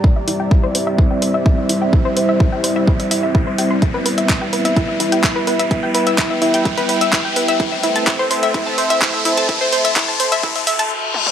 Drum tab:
HH |--o---o---o---o-|--o---o--oo---o-|x-oxx-oxx-oxx-ox|x-oxx-oxxooxx-ox|
CP |----------------|----------------|----x-------x---|----x-------x---|
T1 |----------------|----------------|----------------|----------------|
T2 |----------------|----------------|----------------|----------------|
BD |o---o---o---o---|o---o---o---o---|o---o---o---o---|o---o---o---o---|

HH |x-oxx-oxx-oxx-ox|x-oxx-oxxoox----|
CP |----x-------x---|----x-----------|
T1 |----------------|--------------o-|
T2 |----------------|---------------o|
BD |o---o---o---o---|o---o---o-------|